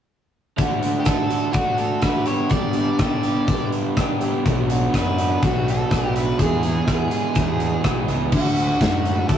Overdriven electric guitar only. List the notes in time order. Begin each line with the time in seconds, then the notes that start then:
0.57 D3 A3 D4 F#4
0.80 A3 D4 F#4
1.05 D3 A3 D4 F#4
1.29 A3 D4 F#4
1.53 D3 A3 D4 F#4
2.01 D3 A3 D4 F#4
2.25 G2 D3 G3 B3 D4 G4
2.50 G2 D3 G3 B3 D4 G4
2.74 G3 B3 D4 G4
2.99 G3 B3 D4 G4
3.23 G3 B3 D4 G4
3.47 G2 D3 G3 B3 D4 G4
3.97 G3 B3 D4 G4
4.22 G3 B3 D4 G4
4.45 B2 F#3 B3 D4 F#4
4.69 B3 D4 F#4
4.92 F#3 B3 D4 F#4
5.17 B3 D4 F#4
5.41 B2 F#3 B3 D4 F#4
5.90 F#3 B3 D4 F#4
6.14 B3 D4 F#4
6.39 E2 B2 E3 G#3 B3 G#4
6.64 E3 G#3 B3 G#4
6.86 E3 G#3 B3 G#4
7.11 E3 G#3 B3 G#4
7.35 E2 B2 E3 G#3 B3 G#4
7.83 E3 G#3 B3 G#4
8.08 E3 G#3 B3 G#4
8.33 D3
8.82 F#3
9.05 A3
9.30 D4